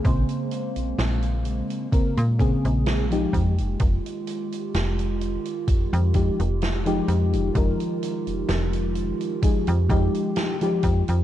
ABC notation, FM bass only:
X:1
M:4/4
L:1/16
Q:"Swing 16ths" 1/4=64
K:Fm
V:1 name="FM bass" clef=bass
B,,, z2 B,,, B,,,3 z2 B,,2 B,,,3 F,, F,,, | F,,, z3 F,,,3 z F,, F,,2 F,,,3 F,, F,,, | F,,, z2 F,,, F,,,3 z2 F,, F,, z3 F,, F,, |]